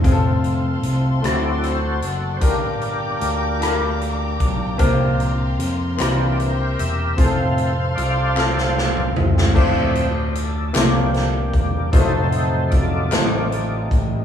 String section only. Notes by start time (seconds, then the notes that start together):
0.04 C5 F5 A5 C6
1.22 D5 F#5
2.42 G5 A#5 D6
4.79 F5 C6
5.99 E5 G5
7.18 C5 F5 A5 C6